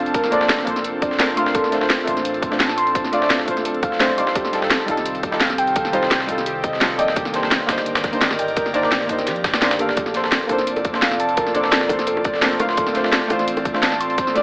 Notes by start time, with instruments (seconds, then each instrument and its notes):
Already playing: analog synth bass F1, analog synth pad C4 D4 F4 A4, synth pluck A5
0.06 closed hi-hat
0.14 synth pluck A#4, kick, closed hi-hat
0.24 snare
0.30 synth stab A#3 D4 A4 D5, synth pluck C5, closed hi-hat
0.40 synth stab A#3 D4 A4 D5, snare
0.49 synth pluck A4, snare, closed hi-hat
0.58 snare
0.64 analog synth bass F1, synth stab A#3 D4 A4, kick, closed hi-hat, open hi-hat
0.70 synth stab C5
0.76 snare, closed hi-hat
0.84 synth pluck A4, closed hi-hat
1.02 synth pluck D5, kick, closed hi-hat
1.11 snare
1.18 synth stab A#3 D4 A4 C5, synth pluck A#4, snare, closed hi-hat
1.29 snare
1.36 analog synth bass D1, synth stab A3 D4 F4 F5, synth pluck C6, closed hi-hat, open hi-hat
1.46 snare
1.55 analog synth bass D1, synth pluck A4, kick, closed hi-hat
1.64 snare
1.71 synth stab A3 D4 F4 C5, snare, closed hi-hat
1.80 synth stab A3 D4 F4 C5, snare
1.90 snare, closed hi-hat
1.99 snare
2.04 analog synth bass A1, synth stab A3 D4 F4, kick, closed hi-hat, open hi-hat
2.10 synth stab C5
2.17 snare, closed hi-hat
2.25 closed hi-hat
2.34 closed hi-hat
2.42 kick, closed hi-hat
2.50 synth stab A3 D4 F4 C5, snare
2.60 synth pluck A5, snare, closed hi-hat
2.69 snare
2.77 synth pluck C6, closed hi-hat, open hi-hat
2.87 closed hi-hat
2.95 synth pluck C5, kick, closed hi-hat
3.04 snare
3.11 synth stab A3 D4 F4 D5, synth pluck D5, closed hi-hat
3.20 synth stab A3 D4 F4 D5, snare
3.30 synth pluck A4, snare, closed hi-hat
3.39 snare
3.45 analog synth bass A1, synth stab A3 D4 F4, kick, closed hi-hat, open hi-hat
3.51 synth stab C5
3.57 snare, closed hi-hat
3.65 analog synth bass D1, synth pluck A4, closed hi-hat
3.74 closed hi-hat
3.83 synth pluck F5, kick, closed hi-hat
3.92 snare
3.99 synth stab A3 D4 F4 C5, synth pluck C5, snare, closed hi-hat
4.10 snare, closed hi-hat
4.16 synth stab G3 D#4 F4 D5, synth pluck C6, closed hi-hat, open hi-hat
4.27 snare
4.35 analog synth bass F1, analog synth pad D#3 C4 G4, synth pluck G4, kick, closed hi-hat
4.45 snare
4.52 synth stab G3 D#4 F4 A4, snare, closed hi-hat
4.61 synth stab G3 D#4 F4 A4, snare
4.70 snare, closed hi-hat
4.80 snare
4.85 analog synth bass C2, synth stab G3 D#4 F4, kick, closed hi-hat, open hi-hat
4.91 synth stab A4
4.97 snare, closed hi-hat
5.05 closed hi-hat
5.15 closed hi-hat
5.23 kick, closed hi-hat
5.31 synth stab G3 D#4 F4 A4, snare
5.41 synth pluck F5, snare, closed hi-hat
5.50 snare
5.58 synth pluck G5, closed hi-hat, open hi-hat
5.67 closed hi-hat
5.76 synth pluck A4, kick, closed hi-hat
5.85 snare
5.92 synth stab G3 D#4 F4 C5, synth pluck C5, closed hi-hat
6.01 synth stab G3 D#4 F4 C5, snare
6.11 synth pluck G4, snare, closed hi-hat
6.20 snare
6.26 analog synth bass C2, synth stab G3 D#4 F4, kick, closed hi-hat, open hi-hat
6.31 synth stab A4
6.38 snare, closed hi-hat
6.46 synth pluck G4, closed hi-hat
6.64 synth pluck D#5, kick, closed hi-hat
6.73 snare
6.80 synth stab G3 D#4 F4 A4, synth pluck A4, snare, closed hi-hat
6.91 snare
6.97 analog synth bass F1, synth stab A#3 D#4 D5 D#5, synth pluck G5, closed hi-hat, open hi-hat
7.08 snare
7.16 analog synth bass C2, synth pluck G4, analog synth pad A#4 D5, kick, closed hi-hat
7.25 snare
7.32 synth stab A#3 D4 D#4 C5, snare, closed hi-hat
7.42 synth stab A#3 D4 D#4 C5, snare
7.51 snare, closed hi-hat
7.60 snare
7.66 analog synth bass G1, synth stab A#3 D4 D#4, kick, snare, closed hi-hat, open hi-hat
7.72 synth stab C5
7.78 snare, closed hi-hat
7.86 closed hi-hat
7.95 snare, closed hi-hat
8.04 kick, snare, closed hi-hat
8.12 synth stab A#3 D4 D#4 C5, closed hi-hat
8.21 synth pluck D#5, snare, closed hi-hat
8.31 snare
8.39 synth pluck G5, closed hi-hat, open hi-hat
8.48 closed hi-hat
8.57 synth pluck A#4, kick, closed hi-hat
8.66 snare
8.73 synth stab A#3 D4 D#4 D5, synth pluck C5, closed hi-hat
8.82 synth stab A#3 D4 D#4 D5, snare
8.92 synth pluck G4, snare, closed hi-hat
9.01 snare
9.06 analog synth bass G1, synth stab A#3 D4 D#4, kick, closed hi-hat, open hi-hat
9.12 synth stab C5
9.18 snare, closed hi-hat
9.27 analog synth bass F2, synth pluck G4, snare, closed hi-hat
9.36 closed hi-hat
9.44 analog synth bass G1, synth pluck D5, kick, snare, closed hi-hat
9.54 snare, closed hi-hat
9.61 synth stab A#3 D4 D#4 C5, synth pluck D5, snare, closed hi-hat
9.71 snare, closed hi-hat
9.78 synth stab A#3 D4 A4 F5, synth pluck G4, closed hi-hat, open hi-hat
9.89 snare
9.97 analog synth bass A#1, analog synth pad C4 F4 A4, synth pluck A4, kick, closed hi-hat
10.06 snare
10.13 synth stab A#3 D4 A4 C5, snare, closed hi-hat
10.22 synth stab A#3 D4 A4 C5, snare
10.32 snare, closed hi-hat
10.41 snare
10.47 analog synth bass F1, synth stab A#3 D4 A4, kick, closed hi-hat, open hi-hat, high bongo
10.52 synth stab C5
10.58 snare, closed hi-hat
10.67 closed hi-hat
10.76 closed hi-hat, high bongo
10.85 kick, closed hi-hat
10.92 synth stab A#3 D4 A4 C5, snare
11.02 synth pluck F5, snare, closed hi-hat
11.11 snare
11.20 synth pluck A5, closed hi-hat, open hi-hat
11.29 closed hi-hat
11.37 synth pluck A#4, kick, closed hi-hat
11.47 snare
11.53 synth stab A#3 D4 A4 D5, synth pluck C5, closed hi-hat
11.62 synth stab A#3 D4 A4 D5, snare
11.72 synth pluck A4, snare, closed hi-hat
11.81 snare
11.87 analog synth bass F1, synth stab A#3 D4 A4, kick, closed hi-hat, open hi-hat, high bongo
11.93 synth stab C5
11.99 snare, closed hi-hat
12.07 synth pluck A4, closed hi-hat
12.17 high bongo
12.24 synth pluck D5, kick, closed hi-hat
12.34 snare
12.41 synth stab A#3 D4 A4 C5, synth pluck A#4, snare, closed hi-hat
12.51 snare
12.59 analog synth bass D1, synth stab A3 D4 F4 F5, analog synth pad A4, synth pluck C6, closed hi-hat, open hi-hat, high bongo
12.69 snare
12.77 analog synth bass D1, synth pluck A4, kick, closed hi-hat
12.87 snare
12.93 synth stab A3 D4 F4 C5, snare, closed hi-hat
13.03 synth stab A3 D4 F4 C5, snare
13.12 snare, closed hi-hat
13.22 snare
13.27 analog synth bass A1, synth stab A3 D4 F4, kick, closed hi-hat, open hi-hat, high bongo
13.33 synth stab C5
13.39 snare, closed hi-hat
13.48 closed hi-hat
13.57 closed hi-hat, high bongo
13.65 kick, closed hi-hat
13.73 synth stab A3 D4 F4 C5, snare
13.83 synth pluck A5, snare, closed hi-hat
13.92 snare
14.00 synth pluck C6, closed hi-hat, open hi-hat
14.10 closed hi-hat
14.18 synth pluck C5, kick, closed hi-hat
14.27 snare
14.34 synth stab A3 D4 F4 D5, synth pluck D5, closed hi-hat